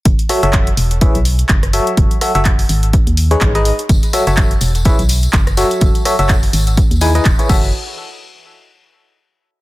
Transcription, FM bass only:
X:1
M:4/4
L:1/16
Q:"Swing 16ths" 1/4=125
K:F#dor
V:1 name="FM bass" clef=bass
F,,, z2 F,,,2 z E,,,2 z B,,,2 z F,,,2 z2 | F,,, z2 F,,,2 z G,,,2 z D,,2 z G,,,2 z2 | F,,, z2 F,,,2 z E,,,2 z B,,,2 z F,,,2 z2 | F,,, z2 F,,,2 z G,,,2 z D,,2 z E,,, z F,,,2 |
z16 |]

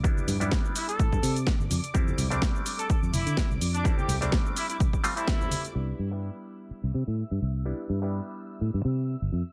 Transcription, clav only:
X:1
M:4/4
L:1/16
Q:"Swing 16ths" 1/4=126
K:C
V:1 name="Clav"
[G,B,DE]3 [G,B,DE]8- [G,B,DE]3 z2 | [G,A,CE]3 [G,A,CD]12- [G,A,CD] | [G,A,CE]3 [G,A,CD]6- [G,A,CD] [G,A,CF] [G,A,CE]4- [G,A,CE] | [G,B,DE]3 [G,B,DE]12- [G,B,DE] |
[G,B,DE]3 [G,B,DE]8- [G,B,DE]3 z2 |]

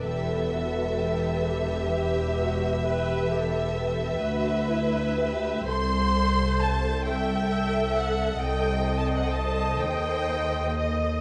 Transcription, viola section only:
X:1
M:12/8
L:1/8
Q:3/8=43
K:Em
V:1 name="Viola section"
A3 G3 B G A B3 | c3 e3 _e6 |]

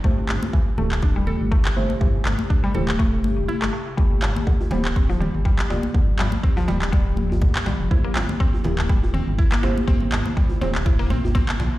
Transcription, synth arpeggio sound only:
X:1
M:4/4
L:1/16
Q:"Swing 16ths" 1/4=122
K:Gdor
V:1 name="Synth arpeggio sound"
A, z3 E, z A, z D G, A z A, z3 | E, z A, z D G, A z A, z3 E A, A, z | G, z3 D, z G, z C F, G, z G, z3 | D, z G, z C F, G, z G, z3 D, z G, z |
E B, C z C z3 G, z C z E B, C z | C z3 G, z C z E B, C z C z3 |]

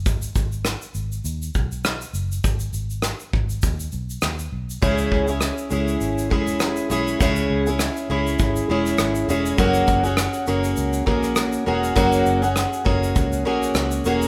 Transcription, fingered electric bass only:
X:1
M:4/4
L:1/16
Q:"Swing 16ths" 1/4=101
K:G#m
V:1 name="Fingered electric bass" clef=bass
G,,,2 G,,,3 z G,,,2 D,,2 B,,,4 F,,,2 | G,,,2 G,,,3 z G,,,2 D,,2 B,,,2 D,,2 B,,,2 | C,,2 C,,3 z C,,2 G,,,2 E,,,4 B,,,2 | C,,2 C,,3 z C,,2 G,,,2 E,,,2 G,,,2 E,,,2 |
F,,,2 F,,,3 z F,,,2 C,,2 A,,,4 E,,,2 | F,,,2 F,,,3 z F,,,2 C,,2 A,,,2 C,,2 E,,,2 |]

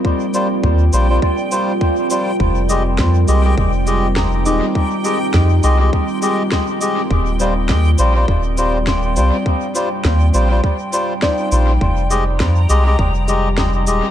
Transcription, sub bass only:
X:1
M:4/4
L:1/8
Q:"Swing 16ths" 1/4=102
K:Eb
V:1 name="Sub bass" clef=bass
z2 E,, B,,, z4 | F,,,2 F,, C,, F,,,3 E,,, | z2 F,, C,, z4 | E,,,2 E,, B,,, E,,,3 C,, |
z2 E,, B,,, z3 B,,, | F,,,2 F,, C,, F,,,3 E,,, |]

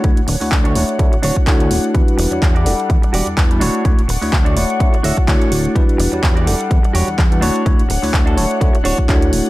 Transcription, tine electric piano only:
X:1
M:4/4
L:1/16
Q:"Swing 16ths" 1/4=126
K:D
V:1 name="Tine electric piano"
[A,DEFc] z2 [A,DEFc]3 [A,DEFc]2 [A,DEFc] z [A,DEFc]2 [A,DEFc]4 | [G,DEFB]3 [G,DEFc]2 z [G,DEAf]6- [G,DEAf] [G,DEFB] [A,DEFc]2 | [A,DEFc] z2 [A,DEFc]3 [A,DEFc]2 [A,DEFc] z [A,DEFc]2 [A,DEFc]4 | [G,DEFB]3 [G,DEFc]2 z [G,DEAf]6- [G,DEAf] [G,DEFB] [A,DEFc]2 |
[A,DEFc] z2 [A,DEFc]3 [A,DEFc]2 [A,DEFc] z [A,DEFc]2 [A,DEFc]4 |]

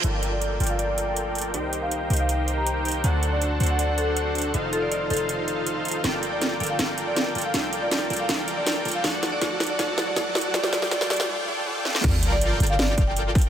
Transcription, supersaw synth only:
X:1
M:4/4
L:1/8
Q:1/4=160
K:Gm
V:1 name="Supersaw synth"
[FABdg]3 [FABdg]4- [FABdg] | [EGBcg]3 [EGBcg]4- [EGBcg] | [D^FAc^f]3 [DFAcf]4- [DFAcf] | [EFAcf]3 [EFAcf]4- [EFAcf] |
[FABdg]3 [FABdg] [FABdg]3 [FABdg] | [FABdg]3 [FABdg] [FABdg]3 [FABdg] | [^FAd^f]2 [FAdf]2 [FAdf]2 [FAdf]2 | [FAdg] [FAdg] [FAdg] [FAdg] [FAdg] [FAdg] [FAdg] [FAdg] |
[Fd]3 [FABdg]4- [FABdg] |]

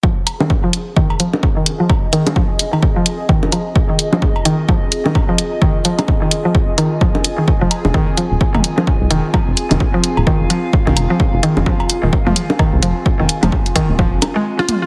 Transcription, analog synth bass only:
X:1
M:4/4
L:1/16
Q:"Swing 16ths" 1/4=129
K:Fm
V:1 name="Analog synth bass" clef=bass
z16 | z16 | z16 | z16 |
z F,,, z F,,, z3 E,,, z F,,, z3 C,, F,,, z | z F,,, z F,,, z3 E,,, z F,,, z3 C,, F,,, z | z F,,, z F,,, z3 E,,, z F,,, z3 C,, F,,, z | z F,,, z F,,, z3 E,,,2 G,,, z6 |]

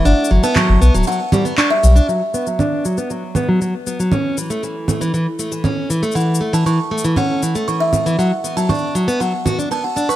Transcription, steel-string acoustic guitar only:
X:1
M:4/4
L:1/16
Q:1/4=118
K:A
V:1 name="Steel-string acoustic guitar" clef=bass
D2 F, B, F,2 B, F, F, z =G, B, D z G, D | F, z B, F, D2 F, B, F,2 B, F, F, z B, F, | C2 E, A, E,2 A, E, E, z A, E, C2 E, A, | E,2 A, E, E, z A, E, C2 E, A, E,2 A, E, |
F, z B, F, D2 F, B, F, z F D B, z D B |]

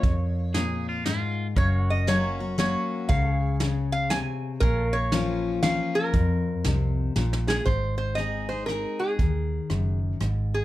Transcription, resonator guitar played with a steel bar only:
X:1
M:3/4
L:1/16
Q:"Swing" 1/4=118
K:Abmix
V:1 name="Resonator guitar played with a steel bar"
d8- d2 z2 | d2 e2 d4 d4 | f4 z2 f2 a3 z | B2 d6 f2 B2- |
B8- B2 A2 | c2 c2 e2 c2 B2 A2- | A6 z4 A2 |]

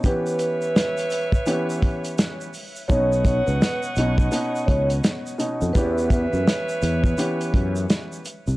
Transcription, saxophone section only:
X:1
M:4/4
L:1/8
Q:"Swing 16ths" 1/4=84
K:Elyd
V:1 name="Saxophone section"
[Bce]6- [Bce] z | [cdf]6- [cdf] z | [Bce]6- [Bce] z |]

